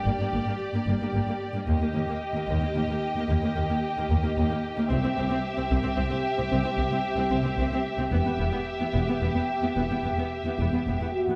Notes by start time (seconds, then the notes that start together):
Already playing: G4 D5
0.04 G1 G2 A#3
0.19 G2 A#3
0.33 G1 G2 A#3
0.46 G2 A#3
0.73 G2 A#3
0.85 G1 G2 A#3
1.00 G2 A#3
1.13 G1 G2 A#3
1.26 G2 A#3
1.54 G2 A#3
1.67 D#2 A#3 G4 D#5
1.79 D#2 A#3
1.93 D#2 A#3
2.07 D#2 A#3
2.34 D#2 A#3
2.47 D#2 A#3
2.61 D#2 A#3
2.75 D#2 A#3
2.88 D#2 A#3
3.16 D#2 A#3
3.28 D#2 A#3
3.43 D#2 A#3
3.56 D#2 A#3
3.70 D#2 A#3
3.97 D#2 A#3
4.10 D#2 A#3
4.23 D#2 A#3
4.37 D#2 A#3
4.49 D#2 A#3
4.77 D#2 A#3
4.89 C2 C4 G4 E5
5.03 C2 C4
5.16 C2 C4
5.29 C2 C4
5.57 C2 C4
5.71 C2 C4
5.83 C2 C4
5.97 C2 C4
6.10 C2 C4
6.37 C2 C4
6.52 C2 C4
6.64 C2 C4
6.78 C2 C4
6.92 C2 C4
7.17 C2 C4
7.30 C2 C4
7.43 C2 C4
7.58 C2 C4
7.72 C2 C4
7.98 C2 C4
8.10 E1 E2 B3 G4 E5
8.25 E2 B3
8.39 E1 E2 B3
8.52 E2 B3
8.80 E2 B3
8.93 E1 E2 B3
9.07 E2 B3
9.20 E1 E2 B3
9.34 E2 B3
9.62 E2 B3
9.76 E1 E2 B3
9.91 E2 B3
10.04 E1 E2 B3
10.17 E2 B3
10.45 E2 B3
10.59 E1 E2 B3
10.72 E2 B3
10.87 E1 E2 B3
11.00 E2 B3
11.12 F#4
11.28 E2 B3